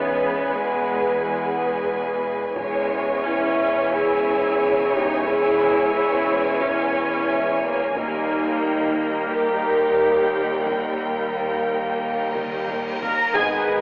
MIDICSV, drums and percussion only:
0, 0, Header, 1, 2, 480
1, 0, Start_track
1, 0, Tempo, 674157
1, 1833, Time_signature, 4, 2, 24, 8
1, 9833, End_track
2, 0, Start_track
2, 0, Title_t, "Taiko and cinematic ensemble drums"
2, 1829, Note_on_c, 9, 41, 88
2, 1900, Note_off_c, 9, 41, 0
2, 3750, Note_on_c, 9, 41, 81
2, 3821, Note_off_c, 9, 41, 0
2, 5669, Note_on_c, 9, 41, 85
2, 5740, Note_off_c, 9, 41, 0
2, 7591, Note_on_c, 9, 41, 83
2, 7662, Note_off_c, 9, 41, 0
2, 8789, Note_on_c, 9, 47, 67
2, 8860, Note_off_c, 9, 47, 0
2, 9028, Note_on_c, 9, 45, 83
2, 9100, Note_off_c, 9, 45, 0
2, 9272, Note_on_c, 9, 43, 80
2, 9343, Note_off_c, 9, 43, 0
2, 9510, Note_on_c, 9, 41, 89
2, 9581, Note_off_c, 9, 41, 0
2, 9750, Note_on_c, 9, 43, 48
2, 9821, Note_off_c, 9, 43, 0
2, 9833, End_track
0, 0, End_of_file